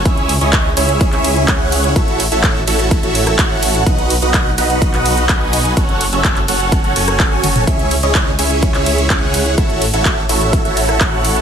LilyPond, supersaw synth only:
\new Staff \with { instrumentName = "Supersaw synth" } { \time 4/4 \key cis \minor \tempo 4 = 126 <cis' e' gis' e''>8 r16 <cis' e' gis' cis'' dis''>8 r16 <cis' e' gis' cis'' e''>8. <cis' e' gis' cis'' e''>8. <cis' e' gis'>4 | <e' fis' a' cis'' e''>8 r16 <e' fis' a' cis'' e''>8 r16 <e' fis' a' cis'' e''>8. <e' fis' a' cis'' e''>8. <fis' cis'' fis''>4 | <dis' fis'>8 r16 <dis' fis' b' dis'' fis''>8 r16 <dis' fis' b' dis'' fis''>8. <dis' fis' b' dis'' fis''>8. r4 | <cis' fis' a' cis'' fis''>8 r16 <cis' fis' a' cis'' e''>8 r16 <cis' fis' a' cis'' fis''>8. <cis' fis' a' cis'' fis''>16 <cis' fis' a' cis'' gis''>8. <cis' fis' a' cis'' gis''>8. |
<cis' e' e''>8 r16 <cis' e' gis' cis'' dis''>8 r16 <cis' e' gis' cis'' e''>8. <cis' e' gis' cis'' e''>8. <cis' cis''>4 | <e' fis' a' cis'' e''>8 r16 <e' fis' a' cis'' e''>8 r16 <e' fis' a' cis'' e''>8. <e' fis' a' cis'' e''>8. <e' fis' a' cis''>4 | }